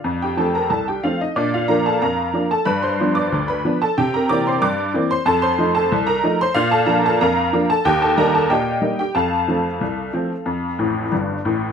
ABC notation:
X:1
M:2/4
L:1/16
Q:1/4=92
K:Fmix
V:1 name="Honky-tonk piano"
[Fdf] [Gg] [Aa] [Bb] [Aa] [Gg] [Ff] [Ee] | [Dd] [Ff] [Bb] [Aa] [Bfb]3 [Aa] | [=B=b] [cc']2 [dd']2 [Bb]2 [Aa] | [Gg] [Bb] [dd'] [cc'] [dd']3 [cc'] |
[Aa] [cc']2 [Aa]2 [Bb]2 [cc'] | [Ff] [Aa] [Bb] [Aa] [Bfb]3 [Aa] | [Gg] [Aa] [Bb] [Aa] [Geg]3 [Gg] | [Afa]8- |
[Afa]4 z4 |]
V:2 name="Honky-tonk piano" clef=bass
F,,2 [F,A,C]2 C,,2 [F,A,C]2 | B,,2 [F,B,D]2 F,,2 [F,B,D]2 | G,,2 [F,=B,D]2 D,,2 [F,B,D]2 | C,2 [=E,B,C]2 G,,2 [E,B,C]2 |
F,,2 [F,A,E]2 C,,2 [F,A,E]2 | B,,2 [F,B,D]2 F,,2 [F,B,D]2 | E,,2 [G,B,E]2 B,,2 [G,B,E]2 | F,,2 [F,A,C]2 C,,2 [F,A,C]2 |
F,,2 [A,,,A,,]2 [G,,,G,,]2 [A,,,A,,]2 |]